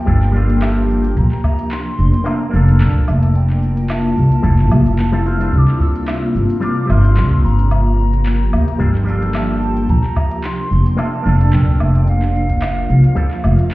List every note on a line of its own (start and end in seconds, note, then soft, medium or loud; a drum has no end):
0.00 1.15 F3 medium
0.00 1.15 A#3 medium
0.00 1.15 G4 medium
0.00 0.62 G5 medium
0.06 1.10 G1 medium
0.06 0.16 G3 loud
0.06 0.17 A#3 medium
0.06 0.17 D4 medium
0.06 0.17 F4 medium
0.06 0.18 A4 loud
0.06 kick loud
0.06 closed hi-hat soft
0.06 cabasa soft
0.23 clap soft
0.23 cabasa soft
0.31 1.13 G3 loud
0.31 1.14 A#3 loud
0.31 1.15 D4 medium
0.35 1.16 F4 loud
0.35 1.17 A4 loud
0.35 cabasa medium
0.50 closed hi-hat medium
0.50 cabasa soft
0.62 clap loud
0.62 closed hi-hat soft
0.62 cabasa soft
0.62 low woodblock medium
0.77 cabasa soft
0.90 cabasa medium
1.04 closed hi-hat medium
1.04 cabasa soft
1.17 1.27 A#1 loud
1.17 3.33 C3 medium
1.17 5.49 A#3 medium
1.17 3.33 D4 loud
1.17 1.73 A#5 medium
1.17 kick loud
1.17 closed hi-hat soft
1.17 cabasa soft
1.32 clap soft
1.44 kick loud
1.44 cabasa medium
1.44 low woodblock medium
1.59 closed hi-hat medium
1.59 cabasa soft
1.71 2.28 C6 medium
1.71 clap loud
1.71 closed hi-hat soft
1.71 cabasa soft
1.99 2.09 F1 medium
1.99 cabasa medium
2.13 closed hi-hat medium
2.13 cabasa soft
2.24 2.34 A#3 loud
2.24 2.35 C4 medium
2.24 2.35 D4 medium
2.24 2.36 F4 medium
2.24 2.36 A4 loud
2.24 2.83 A#5 medium
2.24 closed hi-hat soft
2.24 cabasa soft
2.24 low woodblock medium
2.41 cabasa soft
2.49 2.82 F1 loud
2.49 3.32 A#3 loud
2.49 3.33 D4 loud
2.54 3.34 F4 medium
2.54 3.35 A4 loud
2.54 cabasa medium
2.68 closed hi-hat medium
2.68 cabasa soft
2.81 3.00 A#1 medium
2.81 3.37 A5 medium
2.81 clap loud
2.81 closed hi-hat soft
2.81 cabasa soft
2.95 kick loud
2.95 cabasa soft
3.08 4.11 F1 medium
3.08 cabasa medium
3.08 low woodblock medium
3.23 closed hi-hat medium
3.23 cabasa soft
3.35 5.51 E4 medium
3.35 7.67 F4 medium
3.35 3.91 G5 medium
3.35 closed hi-hat soft
3.35 cabasa soft
3.50 clap soft
3.50 cabasa soft
3.62 cabasa medium
3.77 closed hi-hat soft
3.77 cabasa soft
3.90 5.28 A5 loud
3.90 clap loud
3.90 closed hi-hat soft
3.90 cabasa soft
3.90 low woodblock medium
4.05 cabasa soft
4.17 4.27 C2 medium
4.17 cabasa medium
4.32 closed hi-hat medium
4.32 cabasa soft
4.43 4.71 F1 medium
4.43 4.53 G3 loud
4.43 4.53 C4 medium
4.43 4.54 E4 medium
4.43 4.54 F4 medium
4.43 4.54 A4 loud
4.43 kick loud
4.43 closed hi-hat soft
4.43 cabasa soft
4.59 clap soft
4.59 cabasa soft
4.71 4.86 C2 medium
4.71 cabasa medium
4.71 low woodblock medium
4.86 5.47 F1 medium
4.86 closed hi-hat medium
4.86 cabasa soft
4.99 clap medium
4.99 closed hi-hat soft
4.99 cabasa soft
5.12 5.22 G3 medium
5.12 5.22 C4 medium
5.12 5.23 E4 medium
5.12 5.23 F4 medium
5.12 5.24 A4 medium
5.12 cabasa soft
5.24 5.36 G3 medium
5.24 5.37 C4 medium
5.24 5.37 E4 medium
5.24 5.38 F4 medium
5.24 5.38 C5 medium
5.24 5.55 F6 loud
5.24 cabasa medium
5.37 6.58 G3 medium
5.37 6.58 C4 medium
5.37 6.59 D4 medium
5.37 closed hi-hat medium
5.37 cabasa soft
5.42 6.60 F4 medium
5.42 6.61 A4 medium
5.53 5.63 C2 medium
5.53 7.69 C3 medium
5.53 9.85 A#3 medium
5.53 5.59 E6 medium
5.53 kick loud
5.53 closed hi-hat soft
5.53 cabasa soft
5.58 5.80 D6 loud
5.68 clap soft
5.80 6.32 E6 medium
5.80 kick loud
5.80 cabasa medium
5.96 closed hi-hat medium
5.96 cabasa soft
6.08 clap loud
6.08 closed hi-hat soft
6.08 cabasa soft
6.08 low woodblock medium
6.35 6.45 G1 medium
6.35 cabasa medium
6.50 closed hi-hat medium
6.50 cabasa soft
6.60 6.71 G3 loud
6.60 6.71 C4 medium
6.60 6.72 D4 medium
6.60 6.72 F4 medium
6.60 6.72 A#4 loud
6.60 6.91 D6 loud
6.60 closed hi-hat soft
6.60 cabasa soft
6.78 cabasa soft
6.86 7.18 G1 medium
6.86 7.68 G3 loud
6.86 7.69 C4 medium
6.86 7.69 D4 medium
6.86 7.46 C6 loud
6.90 7.70 F4 loud
6.90 7.71 A#4 loud
6.90 cabasa medium
6.90 low woodblock medium
7.05 closed hi-hat soft
7.05 cabasa soft
7.16 7.36 C2 medium
7.16 clap loud
7.16 closed hi-hat soft
7.16 cabasa soft
7.31 kick loud
7.31 cabasa soft
7.44 8.47 G1 medium
7.44 9.08 A#5 medium
7.44 cabasa medium
7.59 closed hi-hat medium
7.59 cabasa soft
7.71 9.87 F3 medium
7.71 9.87 G4 medium
7.71 closed hi-hat soft
7.71 cabasa soft
7.71 low woodblock medium
7.99 cabasa medium
8.13 closed hi-hat medium
8.13 cabasa soft
8.26 clap loud
8.26 closed hi-hat soft
8.26 cabasa soft
8.53 8.63 D2 medium
8.53 cabasa medium
8.53 low woodblock medium
8.68 closed hi-hat medium
8.68 cabasa soft
8.79 9.83 G1 medium
8.79 8.89 G3 medium
8.79 8.89 A#3 medium
8.79 8.90 D4 medium
8.79 8.90 F4 medium
8.79 8.90 A4 loud
8.79 kick medium
8.79 closed hi-hat soft
8.79 cabasa soft
8.95 clap soft
8.95 cabasa soft
9.04 9.86 G3 loud
9.04 9.87 A#3 medium
9.04 9.88 D4 loud
9.08 9.88 F4 loud
9.08 9.89 A4 loud
9.08 cabasa medium
9.22 closed hi-hat medium
9.22 cabasa soft
9.35 9.91 A5 loud
9.35 clap loud
9.35 closed hi-hat soft
9.35 cabasa soft
9.35 low woodblock medium
9.50 cabasa soft
9.62 cabasa medium
9.77 closed hi-hat medium
9.77 cabasa soft
9.89 9.99 A#1 medium
9.89 12.06 C3 medium
9.89 13.74 A#3 medium
9.89 12.06 D4 loud
9.89 10.45 A#5 loud
9.89 kick loud
9.89 closed hi-hat soft
9.89 cabasa soft
10.04 clap soft
10.16 kick loud
10.16 cabasa medium
10.16 low woodblock medium
10.31 closed hi-hat medium
10.31 cabasa soft
10.44 11.00 C6 loud
10.44 clap loud
10.44 closed hi-hat soft
10.44 cabasa soft
10.71 10.81 F1 medium
10.71 cabasa medium
10.86 closed hi-hat medium
10.86 cabasa soft
10.97 11.07 A#3 medium
10.97 11.07 C4 medium
10.97 11.08 D4 medium
10.97 11.08 F4 medium
10.97 11.09 A4 loud
10.97 11.54 A5 loud
10.97 closed hi-hat soft
10.97 cabasa soft
10.97 low woodblock medium
11.14 cabasa soft
11.23 11.55 F1 loud
11.23 12.04 A#3 loud
11.23 12.06 D4 medium
11.23 cabasa medium
11.27 12.07 F4 loud
11.27 12.08 A4 loud
11.41 closed hi-hat medium
11.41 cabasa soft
11.53 11.73 A#1 medium
11.53 12.07 G5 loud
11.53 clap medium
11.53 closed hi-hat soft
11.53 cabasa soft
11.68 kick loud
11.68 cabasa soft
11.80 12.83 F1 medium
11.80 cabasa medium
11.80 low woodblock medium
11.95 closed hi-hat medium
11.95 cabasa soft
12.07 13.74 F3 medium
12.07 13.74 F4 medium
12.07 13.67 F5 loud
12.07 closed hi-hat soft
12.07 cabasa soft
12.22 clap soft
12.22 cabasa soft
12.35 cabasa medium
12.49 kick medium
12.49 closed hi-hat medium
12.49 cabasa soft
12.62 clap loud
12.62 closed hi-hat soft
12.62 cabasa soft
12.62 low woodblock medium
12.77 cabasa soft
12.90 13.00 C2 medium
12.90 cabasa medium
13.04 closed hi-hat medium
13.04 cabasa soft
13.15 13.25 G3 loud
13.15 13.26 C4 medium
13.15 13.26 E4 medium
13.15 13.27 F4 medium
13.15 13.27 A4 loud
13.15 kick loud
13.15 closed hi-hat soft
13.15 cabasa soft
13.31 clap soft
13.31 cabasa soft
13.44 13.54 F1 loud
13.44 cabasa medium
13.44 low woodblock medium
13.59 closed hi-hat medium
13.59 cabasa soft